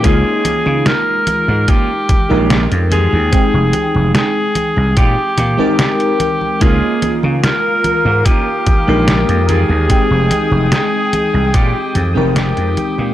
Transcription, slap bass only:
\new Staff \with { instrumentName = "Slap bass" } { \clef bass \time 4/4 \key f \minor \tempo 4 = 73 des,16 r8 des16 r8. aes,16 r8. bes,,8 f,8 ees,16 | r16 f,,16 r16 f,,16 r8. c,16 bes,16 r16 bes,16 r4 r16 | des,16 r8 des16 r8. aes,16 r8. bes,,8 f,8 ees,16 | r16 f,,16 r16 f,,16 r8. c,16 bes,16 r16 f,16 f,,8 f,16 r16 bes,16 | }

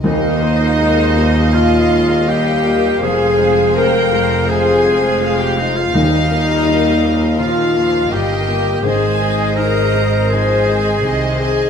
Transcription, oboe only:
\new Staff \with { instrumentName = "Oboe" } { \time 4/4 \key ees \major \tempo 4 = 82 ees'2 f'4 g'4 | aes'4 bes'4 aes'4~ aes'16 g'16 ees'16 f'16 | ees'4.~ ees'16 r16 f'4 g'4 | aes'4 bes'4 aes'4. aes'8 | }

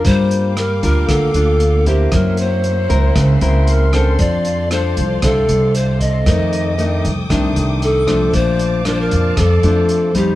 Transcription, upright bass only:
\new Staff \with { instrumentName = "Upright bass" } { \clef bass \time 4/4 \key g \minor \tempo 4 = 116 g,4. d,8 d,8 d,4. | fis,4. cis,8 cis,8 cis,4. | f,4. c,8 c,8 c,4. | f,4. c,8 c,8 c,4. |
bes,,4. f,8 f,8 f,4. | }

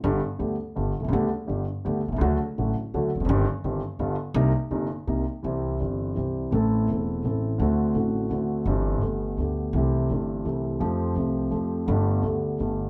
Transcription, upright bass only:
\new Staff \with { instrumentName = "Upright bass" } { \clef bass \time 3/4 \key c \minor \tempo 4 = 168 g,,16. r8 r32 d,16. r8 r32 g,,16. r16 b,,32 c,32 des,32 | d,16. r8 r32 g,,16. r8 r32 d,16. r16 b,,32 c,32 des,32 | d,16. r8 r32 a,,16. r8 r32 d,16. r16 e,,32 f,,32 fis,,32 | g,,16. r8 r32 g,,16. r8 r32 g,,16. r8 r32 |
c,16. r8 r32 g,,16. r8 r32 c,16. r8 r32 | \key c \major c,4 g,,4 c,4 | a,,4 e,,4 a,,4 | d,4 a,,4 d,4 |
g,,4 g,,4 d,4 | c,4 g,,4 c,4 | f,4 c,4 f,4 | g,,4 d,4 g,,4 | }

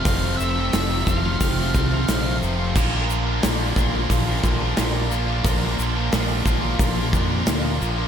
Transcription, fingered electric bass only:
\new Staff \with { instrumentName = "Fingered electric bass" } { \clef bass \time 4/4 \key bes \lydian \tempo 4 = 89 f,,8 f,,8 f,,8 f,,8 f,,8 c,8 bes,,8 f,,8 | bes,,4 bes,,8 bes,,8 bes,,8 bes,,8 bes,,4 | bes,,8 bes,,8 bes,,8 bes,,8 bes,,8 f,8 d,8 bes,,8 | }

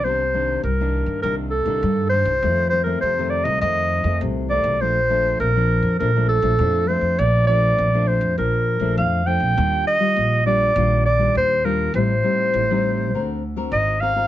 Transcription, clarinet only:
\new Staff \with { instrumentName = "Clarinet" } { \time 4/4 \key bes \major \tempo 4 = 101 c''4 bes'4 bes'8 a'4 c''8~ | c''8 c''16 bes'16 c''8 d''16 ees''16 ees''4 r8 d''8 | c''4 bes'4 bes'8 a'4 c''8 | d''8 d''4 c''8 bes'4 f''8 g''8~ |
g''8 ees''4 d''4 d''8 c''8 bes'8 | c''2~ c''8 r8 ees''8 f''8 | }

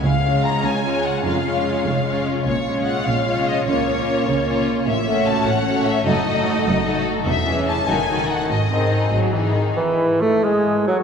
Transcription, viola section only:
\new Staff \with { instrumentName = "Viola section" } { \time 6/8 \key des \major \tempo 4. = 98 r8 <aes des'>4. <aes des'>4 | <aes des'>8 <aes des'>4. <aes des'>4 | r8 <aes des'>4. <aes des'>4 | <bes des'>8 <bes des'>4. <bes des'>4 |
\key gis \phrygian r8 <a cis'>4. <a cis'>4 | <a dis'>8 <a dis'>4. <a dis'>4 | r8 <e cis'>4 <dis dis'>8 <dis dis'>4 | r8 <dis bis>4 fis8 e8 dis8 |
r2. | }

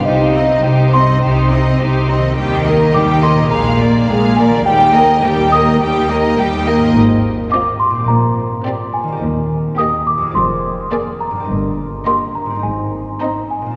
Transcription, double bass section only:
\new Staff \with { instrumentName = "Double bass section" } { \clef bass \time 4/4 \key ees \major \tempo 4 = 105 c,4 c,4 c,4 c,4 | ees,4 ees,4 bes,,4 bes,,4 | ees,4 ees,4 ees,4 ees,4 | aes,,4 r4 bes,,4 r4 |
ees,4 r4 f,,4 r4 | g,,4 r4 aes,,4 r4 | }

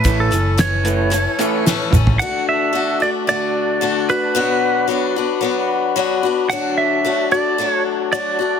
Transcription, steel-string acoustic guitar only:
\new Staff \with { instrumentName = "Steel-string acoustic guitar" } { \time 4/4 \key d \major \tempo 4 = 112 <a, e a cis' e'>8 <a cis' e'>8 <a, e a cis' e'>4 <e a cis' e'>8 <a cis' e'>8 <a, e a cis' e'>8 <a cis' e'>8 | <d a d' fis'>4 <d a d' fis'>8 <a d' fis'>8 <d a d' fis'>4 <d a d' fis'>8 <a d' fis'>8 | <b, fis b d' fis'>4 <fis b d' fis'>8 <b d' fis'>8 <fis b d' fis'>4 <fis b d' fis'>8 <b d' fis'>8 | <d fis a d' fis'>4 <fis a d' fis'>8 <a d' fis'>8 <fis a d' fis'>4 <fis a d' fis'>8 <a d' fis'>8 | }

